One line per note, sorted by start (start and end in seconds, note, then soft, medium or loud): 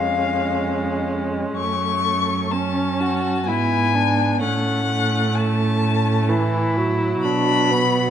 0.00 1.53 F2 medium
0.00 1.58 G#3 medium
0.00 2.52 C#4 soft
0.00 1.08 F5 medium
1.56 3.49 F#2 medium
1.56 2.54 A3 soft
1.56 2.53 C#6 medium
2.51 3.02 C#4 medium
2.51 3.47 C#4 soft
2.51 3.47 A5 medium
3.00 3.49 F#4 medium
3.46 4.43 G#2 soft
3.46 4.43 B3 soft
3.46 3.96 E4 medium
3.46 4.41 G#5 medium
3.95 4.41 D4 medium
4.41 7.23 A2 medium
4.41 4.88 A3 soft
4.41 5.34 C#4 soft
4.41 5.36 F#5 medium
4.88 6.30 A3 medium
5.35 6.31 C#4 soft
5.35 6.76 A5 medium
6.29 6.78 E3 medium
6.29 7.26 E4 medium
6.76 8.10 F#3 medium
7.22 8.10 B2 medium
7.22 7.72 D4 medium
7.22 8.10 B5 medium
7.71 8.10 B3 medium